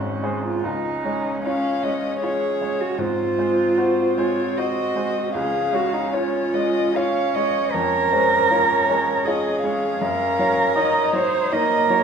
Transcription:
Already playing: G#1 G#2 G#3 C4 C#4 G#4 C5
0.23 G#3 G#4 C5
0.44 F4
0.64 C#2 C#4 D#4
1.04 G#3 C#5
1.43 C#4 F4 C#5 F5
1.83 G#3 C#5 D#5
2.21 F4 G#4 C#5
2.61 G#3 C#5
2.80 F#4
2.98 G#2 C4 F4 C5
3.38 G#3 C5
3.78 F#4 C5
4.18 G#3 F4 C5 C#5
4.56 F#4 C5 D#5
4.95 G#3 C5
5.34 C#2 C#4 G#4 F5
5.72 G#3 F#4 C#5
5.93 D#4
6.12 F4 C#5
6.54 G#3 C#5 D#5
6.96 F4 C#5 F5
7.35 G#3 C#5 D#5
7.72 F2 A#4 C#5
8.12 G#3 C5 C#5
8.50 F4 C#5
8.89 G#3 C#5
9.25 F4 G#4 C#5 D#5
9.63 G#3 C#5 F5
10.01 F#2 C#4 A#4
10.39 F#3 C#5
10.76 D#4 C#5 D#5
11.13 F#3 C5 C#5
11.52 A#3 D#4 A#4 C#5 D#5
11.90 F#3 C#5

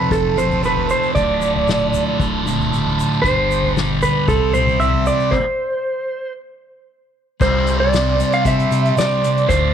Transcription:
Already playing: F2 C3 F3 A3 C4 A4 B4
0.11 F1 A4, kick, floor tom, shaker
0.37 F2 C3 F3 C5, mid tom, shaker
0.50 floor tom, shaker
0.63 F2 C3 F3 B4, shaker
0.76 floor tom
0.90 C5, shaker
1.03 shaker
1.14 D1 D2 A2 D3 D4 E4 A4 D5, kick, floor tom, shaker
1.42 shaker
1.55 floor tom
1.68 snare, mid tom, shaker
1.94 floor tom, shaker
2.19 D1, kick, floor tom, shaker
2.45 D2 A2 D3, mid tom, shaker
2.59 floor tom, shaker
2.70 D2 A2 D3, shaker
2.85 floor tom
3.00 shaker
3.12 shaker
3.22 G1 G2 D3 G3 D4 C5 B5, kick, floor tom, shaker
3.26 G3
3.51 shaker
3.63 floor tom
3.76 snare, mid tom, shaker
4.02 B4, floor tom, shaker
4.26 C2 C3 G3 C4 E4 A4 C5, kick, floor tom, shaker
4.53 C5, mid tom, shaker
4.67 floor tom, shaker
4.80 E5, shaker
4.93 floor tom
5.06 D5, shaker
5.20 shaker
5.31 C5, kick, crash
7.40 C2 C3 G3 C4 D4 C5, kick, crash, shaker
7.67 closed hi-hat, shaker
7.80 D5
7.92 C3 G3 C4, snare, closed hi-hat, shaker
8.17 G3 C4, closed hi-hat, shaker
8.32 F5, closed hi-hat
8.45 C3 E5, kick, closed hi-hat, shaker
8.60 closed hi-hat
8.71 C3, closed hi-hat, shaker
8.85 closed hi-hat
8.96 C3 G3 C4 D5, snare, closed hi-hat, shaker
9.22 G3 C4, closed hi-hat, shaker
9.37 closed hi-hat
9.48 D2 A2 D3 A3 F4 C5 D5, kick, closed hi-hat, shaker

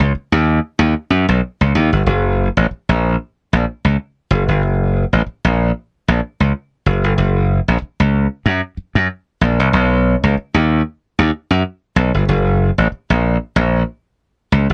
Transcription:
0.00 C#2
0.15 muted slap bass stroke
0.32 D#2
0.79 D#2
1.10 F#2
1.29 B1
1.61 C#2
1.75 D#2
1.93 G1
2.06 F#1
2.57 A1
2.71 muted slap bass stroke
2.89 A#1
3.53 A#1
3.85 C#2
4.31 F#1
4.48 G1
4.62 F#1
5.13 A1
5.26 muted slap bass stroke
5.45 A#1
6.08 A#1
6.40 C#2
6.86 F#1
7.04 G1
7.18 F#1
7.68 A#1
7.82 muted slap bass stroke
8.00 C#2
8.46 F#2
8.77 muted slap bass stroke
8.95 F#2
9.41 A#1
9.60 C2
9.73 B1
10.24 C#2
10.37 muted slap bass stroke
10.54 D#2
11.19 D#2
11.51 F#2
11.96 B1
12.14 G1
12.29 F#1
12.78 A1
12.92 muted slap bass stroke
13.10 A#1
13.56 A#1
14.52 C#2
14.70 G1

